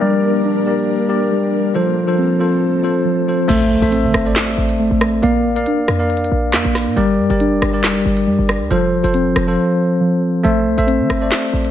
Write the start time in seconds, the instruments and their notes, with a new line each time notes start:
Already playing: ambient pad A#3 D4 A#4
0.00 tine electric piano G3 G4 A#4 D5, ambient pad G3, synth keys G3
0.45 synth keys D4
0.66 tine electric piano G3 G4 A#4 D5
1.08 tine electric piano G3 G4 A#4 D5
1.31 synth keys G3
1.74 tine electric piano F3 F4 A4 C5, ambient pad F3 A3 C4 A4, synth keys F3
2.07 tine electric piano F3 F4 A4 C5
2.18 synth keys C4
2.40 tine electric piano F3 F4 A4 C5
2.83 tine electric piano F3 F4 A4 C5
3.05 synth keys F3
3.28 tine electric piano F3 F4 A4 C5
3.48 808-style bass A1, tine electric piano A3 A4 C5 E5, synth keys A3, closed hi-hat, crash, impact
3.71 808-style bass C2
3.82 808-style bass A1, tine electric piano A3 A4 C5 E5, closed hi-hat
3.91 synth keys C4, closed hi-hat
4.04 808-style bass E3
4.14 808-style bass G1, cross-stick, closed hi-hat
4.25 tine electric piano A3 A4 C5 D5
4.36 snare, clap, closed hi-hat
4.58 808-style bass A1
4.69 closed hi-hat
4.79 808-style bass G1, synth keys A3
4.91 808-style bass A1
5.01 cross-stick
5.22 808-style bass A#1, tine electric piano A#3 A#4 D5 F5, synth keys A#3, closed hi-hat
5.45 808-style bass A1
5.56 808-style bass A#1, tine electric piano A#3 A#4 D5 F5, closed hi-hat
5.66 synth keys D4, closed hi-hat
5.88 808-style bass F2, cross-stick, closed hi-hat
5.99 tine electric piano A#3 A#4 D5 F5
6.10 closed hi-hat
6.17 closed hi-hat
6.24 closed hi-hat
6.32 808-style bass A#1
6.53 808-style bass F2, synth keys A#3, snare, clap
6.65 808-style bass A#1, closed hi-hat
6.75 cross-stick, snare, closed hi-hat
6.87 808-style bass A#2
6.96 808-style bass G1, tine electric piano G3 G4 A#4 D5, synth keys G3, closed hi-hat
7.19 808-style bass G2
7.29 808-style bass G1, tine electric piano G3 G4 A#4 D5, closed hi-hat
7.40 synth keys D4, closed hi-hat
7.52 808-style bass F1
7.62 808-style bass G1, cross-stick, closed hi-hat
7.73 tine electric piano G3 G4 A#4 D5
7.84 808-style bass F1, snare, clap, closed hi-hat
7.95 808-style bass G1
8.06 808-style bass G1
8.17 closed hi-hat
8.27 808-style bass G2, synth keys G3
8.39 808-style bass G1
8.49 cross-stick
8.61 808-style bass D2
8.70 808-style bass F1, tine electric piano F3 F4 A4 C5, synth keys F3, closed hi-hat
9.03 808-style bass F1, tine electric piano F3 F4 A4 C5, closed hi-hat
9.14 synth keys C4, closed hi-hat
9.36 808-style bass F1, cross-stick, closed hi-hat
9.47 tine electric piano F3 F4 A4 C5
10.01 synth keys F3
10.43 808-style bass A1, tine electric piano A3 A4 C5 E5, synth keys A3, closed hi-hat
10.66 808-style bass C2
10.77 808-style bass A1, tine electric piano A3 A4 C5 E5, closed hi-hat
10.87 synth keys C4, closed hi-hat
11.00 808-style bass E3
11.10 808-style bass G1, cross-stick, closed hi-hat
11.21 tine electric piano A3 A4 C5 D5
11.32 snare, clap, closed hi-hat
11.53 808-style bass A1
11.65 closed hi-hat